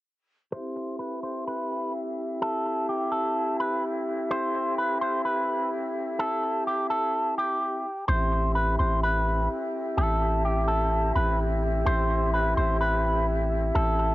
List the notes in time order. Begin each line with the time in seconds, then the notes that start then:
0.52 C4 E4 G4 A4 C5 E5
0.99 B4
1.23 C5
1.47 B4
2.42 A4
2.89 G4
3.12 A4
3.60 B4
4.31 C5
4.78 B4
5.01 C5
5.25 B4
6.19 A4
6.67 G4
6.90 A4
7.38 G4
8.08 A1 C4 E4 G4 A4 C5 E5
8.55 B4
8.79 A1 C5
9.03 B4
9.97 A1 A4
10.45 G4
10.68 A4
11.16 A1 B4
11.86 A1 C5
12.34 B4
12.57 A1 C5
12.81 B4
13.75 A1 A4